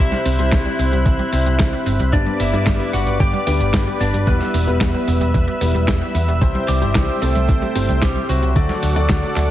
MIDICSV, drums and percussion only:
0, 0, Header, 1, 2, 480
1, 0, Start_track
1, 0, Tempo, 535714
1, 1908, Time_signature, 4, 2, 24, 8
1, 8517, End_track
2, 0, Start_track
2, 0, Title_t, "Drums"
2, 108, Note_on_c, 9, 38, 37
2, 108, Note_on_c, 9, 42, 25
2, 197, Note_off_c, 9, 38, 0
2, 197, Note_off_c, 9, 42, 0
2, 228, Note_on_c, 9, 46, 104
2, 228, Note_on_c, 9, 69, 72
2, 318, Note_off_c, 9, 46, 0
2, 318, Note_off_c, 9, 69, 0
2, 348, Note_on_c, 9, 42, 52
2, 348, Note_on_c, 9, 69, 42
2, 438, Note_off_c, 9, 42, 0
2, 438, Note_off_c, 9, 69, 0
2, 468, Note_on_c, 9, 36, 123
2, 468, Note_on_c, 9, 38, 124
2, 468, Note_on_c, 9, 39, 91
2, 468, Note_on_c, 9, 42, 51
2, 468, Note_on_c, 9, 69, 30
2, 557, Note_off_c, 9, 36, 0
2, 557, Note_off_c, 9, 38, 0
2, 557, Note_off_c, 9, 39, 0
2, 557, Note_off_c, 9, 42, 0
2, 557, Note_off_c, 9, 69, 0
2, 588, Note_on_c, 9, 42, 27
2, 677, Note_off_c, 9, 42, 0
2, 708, Note_on_c, 9, 46, 87
2, 708, Note_on_c, 9, 69, 72
2, 798, Note_off_c, 9, 46, 0
2, 798, Note_off_c, 9, 69, 0
2, 828, Note_on_c, 9, 42, 51
2, 828, Note_on_c, 9, 69, 40
2, 918, Note_off_c, 9, 42, 0
2, 918, Note_off_c, 9, 69, 0
2, 948, Note_on_c, 9, 36, 127
2, 948, Note_on_c, 9, 42, 49
2, 948, Note_on_c, 9, 69, 31
2, 1037, Note_off_c, 9, 42, 0
2, 1037, Note_off_c, 9, 69, 0
2, 1038, Note_off_c, 9, 36, 0
2, 1067, Note_on_c, 9, 42, 25
2, 1157, Note_off_c, 9, 42, 0
2, 1188, Note_on_c, 9, 46, 103
2, 1188, Note_on_c, 9, 69, 75
2, 1278, Note_off_c, 9, 46, 0
2, 1278, Note_off_c, 9, 69, 0
2, 1308, Note_on_c, 9, 42, 52
2, 1308, Note_on_c, 9, 69, 43
2, 1397, Note_off_c, 9, 42, 0
2, 1397, Note_off_c, 9, 69, 0
2, 1428, Note_on_c, 9, 36, 122
2, 1428, Note_on_c, 9, 38, 125
2, 1428, Note_on_c, 9, 39, 90
2, 1428, Note_on_c, 9, 42, 49
2, 1428, Note_on_c, 9, 69, 30
2, 1517, Note_off_c, 9, 36, 0
2, 1517, Note_off_c, 9, 38, 0
2, 1517, Note_off_c, 9, 39, 0
2, 1517, Note_off_c, 9, 42, 0
2, 1517, Note_off_c, 9, 69, 0
2, 1548, Note_on_c, 9, 42, 25
2, 1638, Note_off_c, 9, 42, 0
2, 1667, Note_on_c, 9, 46, 90
2, 1667, Note_on_c, 9, 69, 72
2, 1757, Note_off_c, 9, 46, 0
2, 1757, Note_off_c, 9, 69, 0
2, 1788, Note_on_c, 9, 42, 51
2, 1788, Note_on_c, 9, 69, 42
2, 1878, Note_off_c, 9, 42, 0
2, 1878, Note_off_c, 9, 69, 0
2, 1908, Note_on_c, 9, 36, 119
2, 1908, Note_on_c, 9, 42, 54
2, 1908, Note_on_c, 9, 69, 32
2, 1997, Note_off_c, 9, 36, 0
2, 1998, Note_off_c, 9, 42, 0
2, 1998, Note_off_c, 9, 69, 0
2, 2029, Note_on_c, 9, 42, 25
2, 2118, Note_off_c, 9, 42, 0
2, 2149, Note_on_c, 9, 46, 105
2, 2149, Note_on_c, 9, 69, 75
2, 2238, Note_off_c, 9, 46, 0
2, 2238, Note_off_c, 9, 69, 0
2, 2268, Note_on_c, 9, 42, 54
2, 2268, Note_on_c, 9, 69, 43
2, 2358, Note_off_c, 9, 42, 0
2, 2358, Note_off_c, 9, 69, 0
2, 2388, Note_on_c, 9, 36, 122
2, 2388, Note_on_c, 9, 38, 117
2, 2388, Note_on_c, 9, 39, 85
2, 2388, Note_on_c, 9, 42, 51
2, 2388, Note_on_c, 9, 69, 31
2, 2477, Note_off_c, 9, 36, 0
2, 2477, Note_off_c, 9, 38, 0
2, 2477, Note_off_c, 9, 39, 0
2, 2477, Note_off_c, 9, 42, 0
2, 2477, Note_off_c, 9, 69, 0
2, 2508, Note_on_c, 9, 42, 28
2, 2598, Note_off_c, 9, 42, 0
2, 2628, Note_on_c, 9, 46, 95
2, 2628, Note_on_c, 9, 69, 72
2, 2717, Note_off_c, 9, 46, 0
2, 2717, Note_off_c, 9, 69, 0
2, 2748, Note_on_c, 9, 42, 50
2, 2748, Note_on_c, 9, 69, 41
2, 2838, Note_off_c, 9, 42, 0
2, 2838, Note_off_c, 9, 69, 0
2, 2867, Note_on_c, 9, 36, 121
2, 2868, Note_on_c, 9, 42, 52
2, 2868, Note_on_c, 9, 69, 30
2, 2957, Note_off_c, 9, 36, 0
2, 2957, Note_off_c, 9, 42, 0
2, 2957, Note_off_c, 9, 69, 0
2, 2987, Note_on_c, 9, 42, 26
2, 3077, Note_off_c, 9, 42, 0
2, 3108, Note_on_c, 9, 46, 107
2, 3108, Note_on_c, 9, 69, 76
2, 3198, Note_off_c, 9, 46, 0
2, 3198, Note_off_c, 9, 69, 0
2, 3228, Note_on_c, 9, 42, 52
2, 3228, Note_on_c, 9, 69, 43
2, 3317, Note_off_c, 9, 42, 0
2, 3317, Note_off_c, 9, 69, 0
2, 3347, Note_on_c, 9, 36, 120
2, 3348, Note_on_c, 9, 38, 120
2, 3348, Note_on_c, 9, 39, 89
2, 3348, Note_on_c, 9, 42, 52
2, 3348, Note_on_c, 9, 69, 32
2, 3437, Note_off_c, 9, 36, 0
2, 3438, Note_off_c, 9, 38, 0
2, 3438, Note_off_c, 9, 39, 0
2, 3438, Note_off_c, 9, 42, 0
2, 3438, Note_off_c, 9, 69, 0
2, 3468, Note_on_c, 9, 42, 26
2, 3558, Note_off_c, 9, 42, 0
2, 3588, Note_on_c, 9, 46, 96
2, 3588, Note_on_c, 9, 69, 70
2, 3678, Note_off_c, 9, 46, 0
2, 3678, Note_off_c, 9, 69, 0
2, 3708, Note_on_c, 9, 42, 55
2, 3708, Note_on_c, 9, 69, 44
2, 3798, Note_off_c, 9, 42, 0
2, 3798, Note_off_c, 9, 69, 0
2, 3827, Note_on_c, 9, 36, 119
2, 3828, Note_on_c, 9, 42, 54
2, 3828, Note_on_c, 9, 69, 32
2, 3917, Note_off_c, 9, 36, 0
2, 3918, Note_off_c, 9, 42, 0
2, 3918, Note_off_c, 9, 69, 0
2, 3949, Note_on_c, 9, 38, 34
2, 3949, Note_on_c, 9, 42, 26
2, 4039, Note_off_c, 9, 38, 0
2, 4039, Note_off_c, 9, 42, 0
2, 4069, Note_on_c, 9, 46, 113
2, 4069, Note_on_c, 9, 69, 75
2, 4159, Note_off_c, 9, 46, 0
2, 4159, Note_off_c, 9, 69, 0
2, 4189, Note_on_c, 9, 42, 54
2, 4189, Note_on_c, 9, 69, 44
2, 4279, Note_off_c, 9, 42, 0
2, 4279, Note_off_c, 9, 69, 0
2, 4308, Note_on_c, 9, 36, 117
2, 4309, Note_on_c, 9, 38, 117
2, 4309, Note_on_c, 9, 39, 89
2, 4309, Note_on_c, 9, 42, 55
2, 4309, Note_on_c, 9, 69, 32
2, 4397, Note_off_c, 9, 36, 0
2, 4399, Note_off_c, 9, 38, 0
2, 4399, Note_off_c, 9, 39, 0
2, 4399, Note_off_c, 9, 42, 0
2, 4399, Note_off_c, 9, 69, 0
2, 4429, Note_on_c, 9, 42, 27
2, 4519, Note_off_c, 9, 42, 0
2, 4549, Note_on_c, 9, 46, 99
2, 4549, Note_on_c, 9, 69, 73
2, 4638, Note_off_c, 9, 46, 0
2, 4638, Note_off_c, 9, 69, 0
2, 4669, Note_on_c, 9, 42, 52
2, 4669, Note_on_c, 9, 69, 41
2, 4758, Note_off_c, 9, 42, 0
2, 4758, Note_off_c, 9, 69, 0
2, 4788, Note_on_c, 9, 36, 121
2, 4788, Note_on_c, 9, 42, 52
2, 4788, Note_on_c, 9, 69, 32
2, 4877, Note_off_c, 9, 36, 0
2, 4878, Note_off_c, 9, 42, 0
2, 4878, Note_off_c, 9, 69, 0
2, 4909, Note_on_c, 9, 42, 27
2, 4998, Note_off_c, 9, 42, 0
2, 5028, Note_on_c, 9, 46, 116
2, 5028, Note_on_c, 9, 69, 74
2, 5118, Note_off_c, 9, 46, 0
2, 5118, Note_off_c, 9, 69, 0
2, 5148, Note_on_c, 9, 42, 54
2, 5148, Note_on_c, 9, 69, 44
2, 5238, Note_off_c, 9, 42, 0
2, 5238, Note_off_c, 9, 69, 0
2, 5268, Note_on_c, 9, 36, 116
2, 5268, Note_on_c, 9, 38, 118
2, 5268, Note_on_c, 9, 39, 89
2, 5268, Note_on_c, 9, 42, 52
2, 5268, Note_on_c, 9, 69, 31
2, 5358, Note_off_c, 9, 36, 0
2, 5358, Note_off_c, 9, 38, 0
2, 5358, Note_off_c, 9, 39, 0
2, 5358, Note_off_c, 9, 42, 0
2, 5358, Note_off_c, 9, 69, 0
2, 5388, Note_on_c, 9, 42, 26
2, 5478, Note_off_c, 9, 42, 0
2, 5509, Note_on_c, 9, 46, 98
2, 5509, Note_on_c, 9, 69, 75
2, 5598, Note_off_c, 9, 46, 0
2, 5598, Note_off_c, 9, 69, 0
2, 5629, Note_on_c, 9, 42, 55
2, 5629, Note_on_c, 9, 69, 44
2, 5718, Note_off_c, 9, 42, 0
2, 5718, Note_off_c, 9, 69, 0
2, 5748, Note_on_c, 9, 36, 120
2, 5749, Note_on_c, 9, 42, 57
2, 5749, Note_on_c, 9, 69, 31
2, 5838, Note_off_c, 9, 36, 0
2, 5839, Note_off_c, 9, 42, 0
2, 5839, Note_off_c, 9, 69, 0
2, 5869, Note_on_c, 9, 42, 26
2, 5959, Note_off_c, 9, 42, 0
2, 5988, Note_on_c, 9, 46, 115
2, 5988, Note_on_c, 9, 69, 73
2, 6078, Note_off_c, 9, 46, 0
2, 6078, Note_off_c, 9, 69, 0
2, 6108, Note_on_c, 9, 42, 58
2, 6108, Note_on_c, 9, 69, 42
2, 6198, Note_off_c, 9, 42, 0
2, 6198, Note_off_c, 9, 69, 0
2, 6228, Note_on_c, 9, 36, 113
2, 6228, Note_on_c, 9, 38, 111
2, 6228, Note_on_c, 9, 39, 88
2, 6228, Note_on_c, 9, 42, 55
2, 6228, Note_on_c, 9, 69, 32
2, 6317, Note_off_c, 9, 36, 0
2, 6318, Note_off_c, 9, 38, 0
2, 6318, Note_off_c, 9, 39, 0
2, 6318, Note_off_c, 9, 42, 0
2, 6318, Note_off_c, 9, 69, 0
2, 6349, Note_on_c, 9, 42, 29
2, 6438, Note_off_c, 9, 42, 0
2, 6468, Note_on_c, 9, 46, 101
2, 6468, Note_on_c, 9, 69, 70
2, 6558, Note_off_c, 9, 46, 0
2, 6558, Note_off_c, 9, 69, 0
2, 6588, Note_on_c, 9, 42, 56
2, 6588, Note_on_c, 9, 69, 41
2, 6678, Note_off_c, 9, 42, 0
2, 6678, Note_off_c, 9, 69, 0
2, 6708, Note_on_c, 9, 36, 118
2, 6709, Note_on_c, 9, 42, 53
2, 6709, Note_on_c, 9, 69, 31
2, 6798, Note_off_c, 9, 36, 0
2, 6798, Note_off_c, 9, 42, 0
2, 6798, Note_off_c, 9, 69, 0
2, 6829, Note_on_c, 9, 42, 27
2, 6918, Note_off_c, 9, 42, 0
2, 6948, Note_on_c, 9, 46, 116
2, 6948, Note_on_c, 9, 69, 73
2, 7037, Note_off_c, 9, 46, 0
2, 7037, Note_off_c, 9, 69, 0
2, 7068, Note_on_c, 9, 42, 57
2, 7068, Note_on_c, 9, 69, 42
2, 7158, Note_off_c, 9, 42, 0
2, 7158, Note_off_c, 9, 69, 0
2, 7188, Note_on_c, 9, 36, 112
2, 7189, Note_on_c, 9, 38, 116
2, 7189, Note_on_c, 9, 39, 93
2, 7189, Note_on_c, 9, 42, 55
2, 7189, Note_on_c, 9, 69, 31
2, 7278, Note_off_c, 9, 36, 0
2, 7278, Note_off_c, 9, 38, 0
2, 7278, Note_off_c, 9, 39, 0
2, 7278, Note_off_c, 9, 42, 0
2, 7278, Note_off_c, 9, 69, 0
2, 7309, Note_on_c, 9, 42, 28
2, 7398, Note_off_c, 9, 42, 0
2, 7428, Note_on_c, 9, 46, 101
2, 7428, Note_on_c, 9, 69, 73
2, 7518, Note_off_c, 9, 46, 0
2, 7518, Note_off_c, 9, 69, 0
2, 7548, Note_on_c, 9, 42, 57
2, 7548, Note_on_c, 9, 69, 43
2, 7638, Note_off_c, 9, 42, 0
2, 7638, Note_off_c, 9, 69, 0
2, 7668, Note_on_c, 9, 36, 119
2, 7668, Note_on_c, 9, 42, 56
2, 7668, Note_on_c, 9, 69, 31
2, 7757, Note_off_c, 9, 36, 0
2, 7758, Note_off_c, 9, 42, 0
2, 7758, Note_off_c, 9, 69, 0
2, 7788, Note_on_c, 9, 38, 35
2, 7788, Note_on_c, 9, 42, 27
2, 7878, Note_off_c, 9, 38, 0
2, 7878, Note_off_c, 9, 42, 0
2, 7909, Note_on_c, 9, 46, 112
2, 7909, Note_on_c, 9, 69, 69
2, 7998, Note_off_c, 9, 46, 0
2, 7998, Note_off_c, 9, 69, 0
2, 8029, Note_on_c, 9, 42, 57
2, 8029, Note_on_c, 9, 69, 41
2, 8118, Note_off_c, 9, 42, 0
2, 8118, Note_off_c, 9, 69, 0
2, 8147, Note_on_c, 9, 36, 117
2, 8149, Note_on_c, 9, 38, 114
2, 8149, Note_on_c, 9, 39, 90
2, 8149, Note_on_c, 9, 42, 56
2, 8149, Note_on_c, 9, 69, 30
2, 8237, Note_off_c, 9, 36, 0
2, 8238, Note_off_c, 9, 38, 0
2, 8238, Note_off_c, 9, 39, 0
2, 8238, Note_off_c, 9, 42, 0
2, 8238, Note_off_c, 9, 69, 0
2, 8268, Note_on_c, 9, 42, 30
2, 8358, Note_off_c, 9, 42, 0
2, 8388, Note_on_c, 9, 39, 73
2, 8388, Note_on_c, 9, 46, 98
2, 8388, Note_on_c, 9, 69, 70
2, 8478, Note_off_c, 9, 39, 0
2, 8478, Note_off_c, 9, 46, 0
2, 8478, Note_off_c, 9, 69, 0
2, 8517, End_track
0, 0, End_of_file